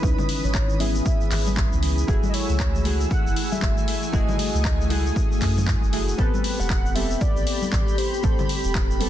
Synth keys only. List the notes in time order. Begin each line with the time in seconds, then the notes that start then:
0.02 C#4 D#4 E4 B4
0.79 B3 C#4 E4 G#4
2.07 A3 E4 F#4 G#4
2.84 A3 E4 F#4 G#4
4.12 A3 E4 F#4 G#4
4.89 A3 E4 F#4 G#4
5.92 A3 E4 F#4 G#4
6.18 B3 C4 G4 A4
6.94 B3 C4 G4 A4
8.23 A3 C4 G4 A4
9.00 B3 C4 G4 A4